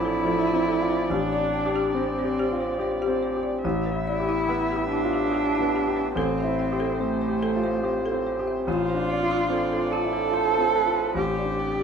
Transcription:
Already playing: A1 F3 C4 D4 E4 F4 A4 D5
0.05 A4
0.25 F3 A4
0.47 F4
0.53 C4
0.69 A4
0.81 F4
0.91 C5
1.10 A1 D4 G4
1.32 D5
1.38 D4
1.54 G5
1.66 G4
1.76 G4
1.95 C4 C5
2.19 C5
2.24 G4
2.39 G4
2.52 F4
2.60 C5
2.79 G4 C5
3.02 G4
3.08 C4
3.23 C5
3.37 G4
3.43 D5
3.64 A1 B3 E4 E5
3.86 B4
3.92 E4
4.06 E4 D5
4.20 G4
4.29 E4
4.48 B3 G4
4.72 G4
4.76 G4
4.89 D4 E4
5.04 F4
5.13 G4
5.32 G4
5.55 E4
5.61 B3
5.76 G4
5.87 G4
5.97 B4
6.15 A1 C4 G4 A4 C5
6.38 E5
6.44 E4
6.59 G5
6.72 G4
6.80 A4
7.00 A3 C4 C5
7.22 C5
7.28 G4
7.43 A4
7.56 F4
7.63 C5
7.83 G4 C5
8.06 A4
8.12 C4
8.27 C5
8.39 G4
8.47 E5
8.67 A1 D4 F4 C5
8.90 C5
8.94 D4
9.10 D5
9.23 F4
9.31 F4
9.49 C4 A4 D5
9.72 F4 A4
9.91 F4 A4
10.04 E4
10.13 A4
10.30 F4 A4 C5
10.54 F4
10.59 C4
10.75 A4 B4
10.86 F4
10.96 C5
11.15 A1 C4 G4 C5
11.38 D5
11.44 D4
11.59 D5 G5
11.72 G4

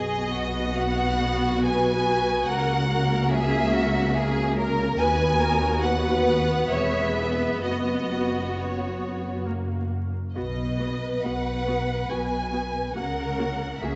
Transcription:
Already playing: B1 B2 B3 F#4 G#4 D#5
0.33 F#4
0.75 F#4 F#5
1.63 B4 G#5
2.48 C#2 C#3 A#3 A#4 F#5
2.91 A#4
3.31 G#4 E5
3.73 F#4
4.16 G#4
4.58 A#4
4.98 D#2 B3 F#4 B4 G#5
5.41 A#4
5.82 B4 F#5
6.71 E1 E2 G#4 C#5 E5
7.17 B4
7.62 F#1 F#2 F#4 D#5
8.57 C#5
9.47 A#3
10.36 B1 B2 B3 F#4 B4 D#5
10.79 B3 F#4
11.23 B1 B2 B3 F#4 F#5
11.66 B3 F#4
12.09 B1 B2 B3 F#4 G#5
12.52 B3 F#4
12.95 C#2 C#3 A#3 F#4 A#4 F#5
13.38 A#3 F#4
13.82 C#2 C#3 A#3 F#4 G#4 E5

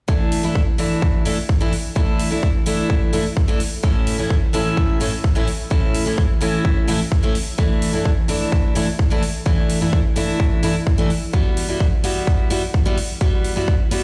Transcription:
0.08 E3 A3 D4 E4, kick
0.32 open hi-hat
0.43 E3 A3 D4 E4
0.55 kick
0.78 E3 A3 D4 E4, open hi-hat
1.02 kick
1.25 E3 A3 D4 E4, open hi-hat
1.49 kick
1.60 E3 A3 D4 E4
1.73 open hi-hat
1.95 E3 A3 D4 E4, kick
2.19 open hi-hat
2.30 E3 A3 D4 E4
2.43 kick
2.66 E3 A3 D4 E4, open hi-hat
2.90 kick
3.13 E3 A3 D4 E4, open hi-hat
3.37 kick
3.48 E3 A3 D4 E4
3.60 open hi-hat
3.83 A2 E3 A3 C#4 E4, kick
4.07 open hi-hat
4.18 A2 E3 A3 C#4 E4
4.30 kick
4.53 A2 E3 A3 C#4 E4, open hi-hat
4.77 kick
5.00 A2 E3 A3 C#4 E4, open hi-hat
5.24 kick
5.35 A2 E3 A3 C#4 E4
5.48 open hi-hat
5.70 A2 E3 A3 C#4 E4, kick
5.95 open hi-hat
6.05 A2 E3 A3 C#4 E4
6.18 kick
6.41 A2 E3 A3 C#4 E4, open hi-hat
6.65 kick
6.87 A2 E3 A3 C#4 E4, open hi-hat
7.12 kick
7.23 A2 E3 A3 C#4 E4
7.35 open hi-hat
7.58 E3 A3 D4 E4, kick
7.82 open hi-hat
7.93 E3 A3 D4 E4
8.05 kick
8.28 E3 A3 D4 E4, open hi-hat
8.52 kick
8.75 E3 A3 D4 E4, open hi-hat
8.99 kick
9.10 E3 A3 D4 E4
9.23 open hi-hat
9.46 E3 A3 D4 E4, kick
9.70 open hi-hat
9.81 E3 A3 D4 E4
9.93 kick
10.16 E3 A3 D4 E4, open hi-hat
10.40 kick
10.63 E3 A3 D4 E4, open hi-hat
10.87 kick
10.98 E3 A3 D4 E4
11.10 open hi-hat
11.33 G3 B3 E4 F#4, kick
11.57 open hi-hat
11.68 G3 B3 E4 F#4
11.80 kick
12.04 G3 B3 E4 F#4, open hi-hat
12.27 kick
12.50 G3 B3 E4 F#4, open hi-hat
12.74 kick
12.85 G3 B3 E4 F#4
12.98 open hi-hat
13.21 G3 B3 E4 F#4, kick
13.44 open hi-hat
13.56 G3 B3 E4 F#4
13.68 kick
13.91 G3 B3 E4 F#4, open hi-hat

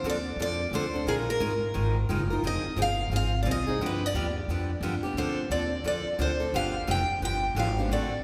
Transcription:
0.03 D#2 D3 F3 C4 D4 A4
0.09 D5
0.36 F2 D3 F3 C4 D4
0.40 A4 D5
0.71 D2 D3 F3 C4 D4 A4 C5
0.94 C4 D4 A4
1.06 A#1 D#3 G#3 D#4 F4 G#4 A#4
1.30 A#4
1.40 G#1 D#3 G#3 D#4 F4 A#4
1.74 G#1 D#3 G#3 D#4 F4 A#4
2.09 F#1 D#3 G#3 D#4 F4 A#4
2.30 D#4 F4 A#4
2.43 F1 F3 C4 D#4 G#4
2.47 D#5
2.64 muted upright bass stroke
2.76 G1 F3 C4 D#4 G#4
2.82 F5
3.10 G#1 F3 C4 D#4 G#4
3.16 F5
3.43 C2 F3 C4 D#4 D5
3.47 G#4
3.51 D#5
3.67 C4 D#4 G#4
3.80 G2 D3 F3 B3 D4 G4
3.86 B4
4.06 D5
4.14 D#2 D3 F3 B3 D4 G4
4.48 F2 D3 F3 B3 D4 G4
4.81 G2 D3 F3 B3 D4 G4
5.02 B3 D4 G4, muted upright bass stroke
5.14 D2 D3 F3 C4
5.18 D4 A4 C5
5.50 D#2 D3 F3 C4 D4 A4 D5
5.84 F2 D3 F3 C4 D4 A4 D5
6.05 muted upright bass stroke
6.19 D2 D3 F3 C4 D4 A4 C5
6.40 C4 D4 A4
6.53 G1 D3 F3 B3 D4 G4 F5
6.87 F1 D3 F3 B3 D4 G4 G5
7.09 muted upright bass stroke
7.21 G1 D3 F3 B3 D4 G4
7.25 G5
7.55 G#1 D3 F3 B3 D4 G4
7.59 F5
7.78 B3 D4 G4
7.89 A1 D3 A3 C4 F#4 D5
7.93 A4

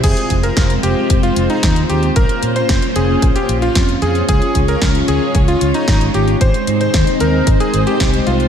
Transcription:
0.03 F1 G#3 C4 F4 G#4 C5, kick, closed hi-hat, crash
0.17 closed hi-hat
0.30 F1, kick, closed hi-hat
0.43 A#4, closed hi-hat
0.57 F1, kick, snare, closed hi-hat
0.70 closed hi-hat
0.83 F1 G4, closed hi-hat
1.10 F1, kick, closed hi-hat
1.23 F4, closed hi-hat
1.36 F1, closed hi-hat
1.50 D#4, closed hi-hat
1.63 D#2, kick, snare, closed hi-hat
1.76 closed hi-hat
1.90 D#2 G4, closed hi-hat
2.03 closed hi-hat
2.16 A#1 A#3 C#4 F4 A#4, kick, closed hi-hat
2.29 closed hi-hat
2.43 A#2, closed hi-hat
2.56 C5, closed hi-hat
2.69 F1, kick, snare, closed hi-hat
2.82 closed hi-hat
2.96 F1 G#4, closed hi-hat
3.22 A#1, kick, closed hi-hat
3.36 G4, closed hi-hat
3.49 A#1, closed hi-hat
3.62 F4, closed hi-hat
3.75 F2, kick, snare, closed hi-hat
3.89 closed hi-hat
4.02 F2 G#4, closed hi-hat
4.15 closed hi-hat
4.29 C#2 G#3 G#4 C#5, kick, closed hi-hat
4.42 closed hi-hat
4.55 C#2, kick, closed hi-hat
4.68 A#4, closed hi-hat
4.82 C#2, kick, snare, closed hi-hat
4.95 closed hi-hat
5.08 C#2 G#4, closed hi-hat
5.35 C#2, kick, closed hi-hat
5.48 F4, closed hi-hat
5.61 C#2, closed hi-hat
5.74 D#4, closed hi-hat
5.88 G#1, kick, snare, closed hi-hat
6.01 closed hi-hat
6.14 G#1 G4, closed hi-hat
6.28 closed hi-hat
6.41 G#1 C4 D#4 C5, kick, closed hi-hat
6.54 closed hi-hat
6.67 G#2, closed hi-hat
6.81 C5, closed hi-hat
6.94 D#2, kick, snare, closed hi-hat
7.07 closed hi-hat
7.20 D#2 A#4, closed hi-hat
7.47 G#1, kick, closed hi-hat
7.60 G#4, closed hi-hat
7.74 G#1, closed hi-hat
7.87 G4, closed hi-hat
8.00 C2, kick, snare, closed hi-hat
8.13 closed hi-hat
8.27 C2 F4, closed hi-hat
8.40 closed hi-hat

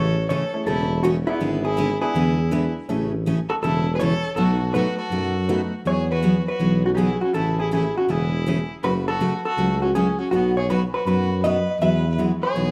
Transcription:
Already playing: A1 C#3 E3 A3 C#4 G#4 A4 C#5
0.29 C#3 E3 A3 C#4 G#4 A4 C#5
0.53 A3 C#4 E4 G#4 A4
0.66 E1 C#3 E3 A3 C#4 E4 G#4 A4
1.03 C#3 E3 A3 C#4 F#4 G#4
1.26 B3 D4 E4 G#4 B4
1.40 G#1 D3 G#3 B3 E4 G#4
1.65 E4 G#4
1.77 D3 G#3 B3 E4 G#4
2.01 B3 D4 E4 G#4 B4
2.15 E2 D3 G#3 B3 E4 G#4
2.51 D3 G#3 B3 D4 E4 G#4 B4
2.88 A1 C#3 E3 A3 C#4 E4 G#4 A4
3.26 C#3 E3 A3 C#4 G#4
3.49 F#4 A4
3.62 E1 C#3 E3 A3 C#4 E4 G#4 A4
3.95 G#4 B4
3.99 C#3 E3 A3 C#4 G#4 A4 C#5
4.36 B1 B2 F#3 A3 D#4 F#4 A4
4.74 B2 F#3 A3 B3 D#4 F#4 A4 B4
4.98 F#4 A4
5.11 F#2 B2 F#3 A3 D#4 F#4
5.48 B2 F#3 A3 B3 D#4 F#4 B4
5.85 E2 E3 F#3 B3 F#4 G#4 C#5
6.11 F#4 B4
6.22 E3 F#3 B3 F#4 G#4
6.48 F#4 B4
6.59 B1 E3 F#3 B3 F#4 G#4
6.85 C#4 F#4
6.95 E3 F#3 B3 D#4 F#4 G4 G#4
6.99 E4 G#4
7.21 C#4 F#4
7.34 A1 C#3 E3 A3 C#4 E4 G#4 A4
7.60 E4 G#4
7.71 C#3 E3 A3 C#4 E4 G#4
7.98 C#4 F#4
8.08 E1 C#3 E3 A3 C#4 E4 G#4
8.46 C#3 E3 A3 C#4 G#4
8.83 F#1 C#3 F#3 A3 C#4 F#4 B4
9.08 F#4 A4
9.20 C#3 F#3 A3 C#4 F#4
9.45 F#4 A4
9.58 C#2 C#3 F#3 A3 C#4 F#4
9.82 C#4 F#4
9.95 C#3 F#3 A3 C#4 F#4 G#4
10.19 C#4 F#4
10.31 B1 B2 F#3 B3 D#4 F#4
10.57 G#4 C#5
10.70 B2 F#3 B3 D#4 F#4 B4
10.94 F#4 B4
11.06 F#2 B2 F#3 B3 D#4 F#4 B4
11.43 B2 F#3 B3 D#4 F#4 B4 D#5
11.80 E2 E3 F#3 B3 F#4 G#4 B4 E5
12.18 E3 F#3 G#3 B3 E4 F#4 G#4
12.42 G#4 C#5
12.55 B1 E3 F#3 B3 F#4 G#4

